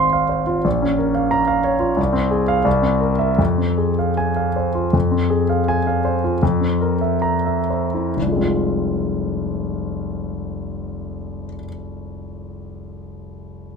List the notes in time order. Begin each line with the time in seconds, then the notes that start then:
Already playing: G#1 C4 C5 F5 C6
0.13 F5
0.29 C5
0.47 F4
0.65 A#1
0.82 C#4
0.98 A#4
1.15 F5
1.31 A#5
1.47 F5
1.64 C#5
1.80 F4
1.97 C2
2.13 C4
2.31 G#4
2.48 F5
2.65 C2
2.82 C4
3.01 A#4
3.19 E5
3.39 F2
3.58 C4
3.77 G#4
3.99 F5
4.17 G#5
4.36 F5
4.56 C5
4.75 F4
4.93 F2
5.11 C4
5.30 G#4
5.49 F5
5.68 G#5
5.87 F5
6.05 C5
6.24 F4
6.43 F2
6.61 C4
6.81 A#4
7.01 E5
7.22 A#5
7.46 E5
7.70 C5
7.94 E4
8.17 F1
8.22 C2
8.27 F3
8.32 G#3
8.36 C4
8.41 F4